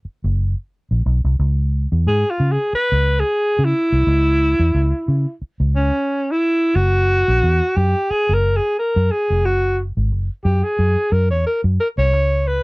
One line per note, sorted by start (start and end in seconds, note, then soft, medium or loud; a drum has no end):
0.05 muted fingered electric bass stroke soft
0.24 0.53 F#1 loud
0.91 1.04 A#1 medium
1.06 1.22 B1 medium
1.24 1.38 C2 medium
1.39 1.86 C#2 loud
1.92 2.05 E2 medium
2.07 2.23 G#2 medium
2.07 2.32 G#4 loud
2.30 2.53 F4 medium
2.40 2.57 C#3 medium
2.52 2.74 G#4 medium
2.73 3.21 B4 loud
2.73 muted fingered electric bass stroke soft
2.92 3.22 C#2 medium
3.20 3.66 G#4 loud
3.59 3.72 C#3 medium
3.65 5.32 E4 loud
3.92 4.06 C2 medium
4.07 4.53 C#2 loud
4.59 4.73 E2 medium
4.75 4.91 C#2 loud
5.08 5.25 C#3 loud
5.42 muted fingered electric bass stroke soft
5.60 5.90 C#2 medium
5.76 6.33 C#4 medium
6.31 6.77 E4 medium
6.76 7.22 F#1 loud
6.76 7.78 F#4 loud
7.28 7.41 A#1 medium
7.43 7.60 E2 medium
7.76 7.93 F#2 loud
7.76 8.12 G4 loud
8.10 8.35 G#4 loud
8.10 muted fingered electric bass stroke soft
8.29 8.59 F#1 medium
8.33 8.58 A#4 loud
8.56 8.78 G#4 loud
8.79 9.13 A#4 medium
8.96 9.09 F#2 medium
9.11 9.47 G#4 loud
9.30 9.45 F1 medium
9.45 9.91 F#1 loud
9.45 9.79 F#4 medium
9.97 10.12 G#1 medium
10.12 10.28 F#1 medium
10.44 10.62 F#2 loud
10.44 10.65 G4 medium
10.63 11.13 G#4 medium
10.79 10.95 F#2 medium
11.12 11.31 F#2 loud
11.12 11.30 A#4 medium
11.30 11.44 E2 medium
11.30 11.44 C#5 medium
11.46 11.61 A#4 medium
11.64 11.77 F#2 loud
11.80 11.88 A#4 medium
11.98 12.13 C2 medium
11.98 12.49 C#5 loud
12.13 12.59 C#2 medium
12.47 12.63 B4 medium